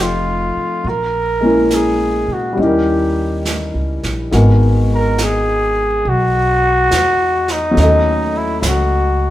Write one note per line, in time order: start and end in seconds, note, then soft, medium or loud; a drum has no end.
0.00 0.52 F1 medium
0.00 0.84 F3 soft
0.00 0.85 A3 soft
0.00 0.85 C4 soft
0.00 0.86 D#4 soft
0.00 0.90 F4 medium
0.00 0.86 A4 soft
0.56 muted upright bass stroke soft
0.84 2.24 A#1 medium
0.84 1.76 A#4 medium
0.84 brush sweep soft
1.40 2.57 G#3 soft
1.40 2.58 A#3 soft
1.40 2.54 C#4 soft
1.40 2.59 E4 soft
1.46 2.60 A#4 soft
1.71 2.34 G#4 medium
1.71 snare soft
1.71 hi-hat pedal medium
2.28 2.55 A#2 soft
2.33 2.60 F#4 medium
2.53 4.29 G3 soft
2.53 4.31 C#4 soft
2.57 3.70 D#2 medium
2.57 4.31 D#4 soft
2.57 4.33 E4 soft
2.57 brush sweep soft
2.61 3.43 G4 medium
2.61 4.31 A#4 soft
3.45 snare soft
3.45 hi-hat pedal soft
3.74 4.01 C#2 soft
4.03 4.30 A#1 soft
4.03 snare soft
4.31 6.01 G#1 medium
4.31 7.77 G#3 soft
4.31 7.77 B3 soft
4.31 7.77 D#4 soft
4.31 7.78 F#4 soft
4.31 7.78 A#4 soft
4.31 brush sweep soft
4.31 snare soft
4.94 5.25 A#4 medium
5.18 snare soft
5.18 hi-hat pedal medium
5.23 6.11 G#4 medium
6.05 6.87 B1 medium
6.05 brush sweep soft
6.09 7.53 F#4 medium
6.91 7.73 E2 medium
6.91 snare soft
6.91 hi-hat pedal soft
7.48 8.39 D#4 medium
7.48 snare soft
7.71 9.30 F#3 soft
7.71 9.30 A3 soft
7.77 8.59 D#2 medium
7.77 9.30 C#4 soft
7.77 9.30 D#5 soft
7.77 brush sweep soft
7.77 snare soft
7.83 9.30 A4 soft
8.37 8.60 E4 medium
8.61 9.30 C#2 medium
8.61 8.69 E4 medium
8.61 snare soft
8.61 hi-hat pedal medium
8.67 9.30 F#4 medium